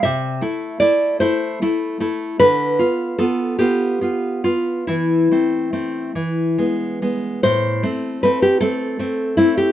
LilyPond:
\new Staff \with { instrumentName = "Nylon-string guitar" } { \time 6/8 \key a \minor \tempo 4. = 50 << { e''4 d''8 c''8 r4 | b'4 a'8 g'4 f'8 | e'4. r4. | c''4 b'16 g'16 a'4 e'16 g'16 | } \\ { c8 <a e'>8 <a e'>8 <a e'>8 <a e'>8 <a e'>8 | d8 <b f'>8 <b f'>8 <b f'>8 <b f'>8 b8 | e8 <a c'>8 <a c'>8 e8 <gis b>8 <gis b>8 | a,8 <a c'>8 <a c'>8 <a c'>8 <a c'>8 <a c'>8 | } >> }